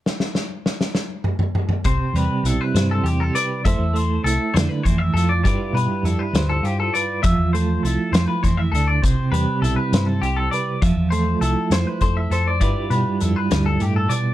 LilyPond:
<<
  \new Staff \with { instrumentName = "Clean electric guitar" } { \time 6/8 \key c \major \tempo 4. = 67 r2. | c''8 b'8 a'16 b'8 a'16 g'16 a'16 d''8 | e''8 c''8 a'8 c''16 b'16 c''16 e''16 a'16 d''16 | d''8 b'8 a'16 b'8 a'16 g'16 a'16 d''8 |
e''8 c''8 a'8 c''16 b'16 c''16 e''16 a'16 d''16 | c''8 b'8 a'16 b'8 a'16 g'16 a'16 d''8 | e''8 c''8 a'8 c''16 b'16 c''16 e''16 a'16 d''16 | d''8 b'8 a'16 b'8 a'16 g'16 a'16 d''8 | }
  \new Staff \with { instrumentName = "Clean electric guitar" } { \time 6/8 \key c \major << { r2. | r4 e'8 c''8 g'8 b'8 | <a e' a' c''>4 e'2 | <g e' f' b'>4 e'8 c''8 f'8 b'8 |
r4 e'2 | r4 e'8 c''8 g'8 b'8 | r4 e'8 c''8 a'8 c''8 | <g e' f' b'>4 e'2 | } \\ { r2. | c8 g2~ g8 | r8 a4 d8 e8 f8 | g,8 g2~ g8 |
f8 a4 f8 e8 d8 | c8 g2~ g8 | f8 a2~ a8 | g,8 g4 g,8 a,8 b,8 | } >> }
  \new Staff \with { instrumentName = "Fingered electric bass" } { \clef bass \time 6/8 \key c \major r2. | c,16 r16 e,16 r16 b,,16 r16 g,8 e,8 r8 | f,16 e,8. c,16 r16 f,16 r16 f,8 f,8 | g,16 r16 b,16 r16 f,16 r16 d,8 g,8 r8 |
f,16 e,8. c,16 r16 f,16 r16 f,8 d,8 | c,16 r16 e,16 r16 b,,16 r16 g,8 c,8 r8 | f,16 e,8. c,16 r16 f,16 r16 f,8 f,8 | g,16 r16 b,16 r16 f,16 r16 d,8 g,8 r8 | }
  \new DrumStaff \with { instrumentName = "Drums" } \drummode { \time 6/8 sn16 sn16 sn8 sn16 sn16 sn8 toml16 toml16 toml16 toml16 | <hh bd>8 hh8 hh8 <hh sn>8 hh8 hh8 | <hh bd>8 hh8 hh8 <hh sn>8 <hh bd>8 hh8 | <hh bd>8 hh8 hh8 <hh sn>8 hh8 hh8 |
<hh bd>8 hh8 hh8 <hh sn>8 <hh bd>8 hh8 | <hh bd>8 hh8 hh8 <hh sn>8 hh8 hh8 | <hh bd>8 hh8 hh8 <hh sn>8 <hh bd>8 hh8 | <hh bd>8 hh8 hh8 <hh sn>8 hh8 hh8 | }
>>